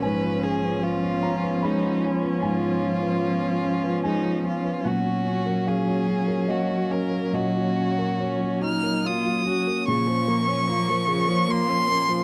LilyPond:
<<
  \new Staff \with { instrumentName = "Violin" } { \time 3/4 \key bes \minor \tempo 4 = 74 ces''8 aes'8 f'4 ees'8 des'8 | f'2 ees'8 f'8 | ges'4 aes'4 ges'8 bes'8 | ges'4. f'''8 ees'''4 |
des'''2 c'''4 | }
  \new Staff \with { instrumentName = "Grand piano" } { \time 3/4 \key bes \minor << { aes''4. bes''8 ces'''4 | aes''2 aes''8 r8 | ges''4 f''4 ees''4 | ees''4 des''4. r8 |
r2. | } \\ { aes,16 f'16 des'16 ces''8 f'16 des'16 ces''16 aes16 f'16 des'16 ces''16 | aes,16 f'16 des'16 ces''8 f'16 des'16 ces''16 aes16 f'16 des'16 ces''16 | bes,16 ges'16 des'16 bes'8 ges'16 des'16 bes'16 bes16 ges'16 des'16 bes'16 | bes,16 ges'16 des'16 bes'8 ges'16 des'16 bes'16 bes16 ges'16 des'16 bes'16 |
bes,16 des'16 bes'16 des''16 f'16 bes'16 f'16 des''16 f'16 bes'16 des'16 f'16 | } >> }
  \new Staff \with { instrumentName = "Ambient pad" } { \time 3/4 \key bes \minor <ces' f' des''>2.~ | <ces' f' des''>2. | <ges bes des''>2.~ | <ges bes des''>2. |
<bes f' bes'>2. | }
  \new Staff \with { instrumentName = "Viola" } { \time 3/4 \key bes \minor des'2.~ | des'2. | des'2.~ | des'4 des'8 ees'8 f'8 ges'8 |
des16 f16 bes16 des'16 bes16 f16 des16 f16 bes16 des'16 bes16 f16 | }
  \new Staff \with { instrumentName = "Cello" } { \clef bass \time 3/4 \key bes \minor f2.~ | f2. | ges2.~ | ges2~ ges8. r16 |
f2. | }
>>